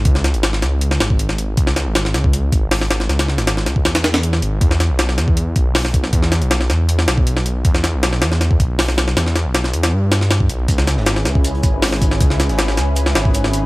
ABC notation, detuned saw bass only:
X:1
M:4/4
L:1/16
Q:1/4=158
K:C#m
V:1 name="Detuned saw bass" clef=bass
C,,3 G,,,3 C,,4 G,,,6 | C,,3 G,,,3 C,,4 G,,,6 | C,,3 G,,,3 C,,2 E,,6 G,,,2 | E,,3 B,,,3 E,,4 B,,,6 |
E,,3 B,,,3 E,,4 B,,,6 | E,,3 B,,,3 E,,4 B,,,6 | E,,3 B,,,3 E,,2 =G,,6 B,,,2 | C,,3 G,,,3 C,,4 G,,,6 |
C,,3 G,,,3 C,,4 G,,,6 |]